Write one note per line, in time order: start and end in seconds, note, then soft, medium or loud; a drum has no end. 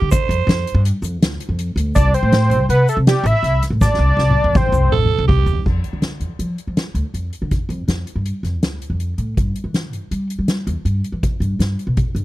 0.00 0.17 D3 medium
0.00 0.10 G4 medium
0.12 0.82 C5 loud
0.12 kick loud
0.12 closed hi-hat medium
0.12 shaker medium
0.29 0.45 F2 medium
0.29 closed hi-hat medium
0.47 0.63 F2 medium
0.47 snare loud
0.47 closed hi-hat medium
0.67 closed hi-hat medium
0.75 0.90 G2 loud
0.85 closed hi-hat loud
1.02 1.21 F2 loud
1.02 closed hi-hat medium
1.02 shaker soft
1.21 1.36 D2 loud
1.21 snare loud
1.21 closed hi-hat loud
1.40 closed hi-hat medium
1.49 1.72 F2 medium
1.59 closed hi-hat medium
1.76 1.92 D2 medium
1.76 closed hi-hat medium
1.95 2.11 C2 loud
1.95 2.13 D5 loud
1.95 2.13 A5 loud
1.95 kick loud
1.95 closed hi-hat medium
1.95 shaker medium
2.14 2.66 C5 medium
2.14 2.66 G5 medium
2.14 closed hi-hat medium
2.23 2.51 A2 medium
2.32 snare loud
2.32 closed hi-hat medium
2.50 2.58 C2 medium
2.50 closed hi-hat medium
2.69 2.84 C3 medium
2.69 2.87 B4 loud
2.69 2.87 F#5 loud
2.69 closed hi-hat medium
2.88 2.97 A4 medium
2.88 2.97 E5 medium
2.88 closed hi-hat medium
2.88 shaker soft
2.97 3.12 C3 medium
3.07 3.27 G4 loud
3.07 3.27 D5 loud
3.07 snare loud
3.07 closed hi-hat medium
3.24 3.32 A1 loud
3.24 3.62 E5 loud
3.24 3.62 B5 loud
3.24 closed hi-hat medium
3.43 3.58 C2 medium
3.43 snare soft
3.43 closed hi-hat medium
3.63 snare soft
3.63 closed hi-hat medium
3.70 3.86 A2 medium
3.81 4.58 D5 loud
3.81 4.58 A5 loud
3.81 kick loud
3.81 snare medium
3.81 shaker medium
3.94 snare medium
3.99 4.14 C2 medium
4.17 4.32 C2 medium
4.17 snare medium
4.30 high tom medium
4.44 4.59 E2 loud
4.55 4.92 C5 medium
4.55 4.92 G5 medium
4.55 kick loud
4.55 high tom medium
4.55 shaker soft
4.67 mid tom medium
4.72 4.90 C2 loud
4.72 shaker soft
4.90 5.05 A1 loud
4.90 5.26 A4 loud
4.90 mid tom medium
5.04 mid tom medium
5.18 5.41 C2 medium
5.28 5.62 G4 loud
5.28 kick loud
5.28 floor tom loud
5.41 floor tom medium
5.46 5.61 E2 medium
5.46 shaker soft
5.53 floor tom loud
5.66 5.81 F2 medium
5.66 kick medium
5.66 crash medium
5.84 closed hi-hat soft
5.93 6.22 D3 medium
6.02 snare medium
6.02 closed hi-hat medium
6.20 6.28 F2 medium
6.20 closed hi-hat soft
6.39 6.54 F3 medium
6.39 closed hi-hat medium
6.58 closed hi-hat soft
6.67 6.82 F3 medium
6.77 snare medium
6.77 closed hi-hat medium
6.95 7.02 D2 medium
6.95 closed hi-hat medium
7.14 7.29 F2 medium
7.14 closed hi-hat medium
7.33 closed hi-hat medium
7.42 7.57 D3 medium
7.51 kick medium
7.51 closed hi-hat medium
7.69 7.84 F2 medium
7.69 closed hi-hat soft
7.88 8.03 F2 medium
7.88 snare medium
7.88 closed hi-hat medium
8.07 closed hi-hat soft
8.16 8.31 G2 medium
8.26 closed hi-hat medium
8.43 8.62 F2 medium
8.43 snare soft
8.43 closed hi-hat soft
8.62 8.77 D2 medium
8.62 snare medium
8.62 closed hi-hat medium
8.82 closed hi-hat medium
8.90 9.13 F2 medium
9.00 closed hi-hat medium
9.18 9.33 A2 medium
9.18 closed hi-hat soft
9.37 9.52 G2 medium
9.37 kick medium
9.37 closed hi-hat medium
9.56 closed hi-hat soft
9.64 9.92 E3 medium
9.74 snare medium
9.74 closed hi-hat medium
9.92 10.00 G2 medium
9.92 closed hi-hat medium
10.11 10.26 G3 medium
10.11 closed hi-hat medium
10.30 closed hi-hat medium
10.39 10.54 G3 medium
10.48 snare loud
10.48 closed hi-hat medium
10.67 10.74 E2 medium
10.67 closed hi-hat medium
10.85 11.00 G2 medium
10.85 closed hi-hat medium
11.04 closed hi-hat medium
11.12 11.28 E3 medium
11.23 kick medium
11.23 closed hi-hat medium
11.40 11.56 G2 medium
11.40 closed hi-hat medium
11.59 11.75 G2 medium
11.59 snare medium
11.59 closed hi-hat medium
11.79 closed hi-hat soft
11.87 12.02 B2 medium
11.97 kick loud
11.97 closed hi-hat medium
12.15 12.25 G2 medium
12.15 closed hi-hat soft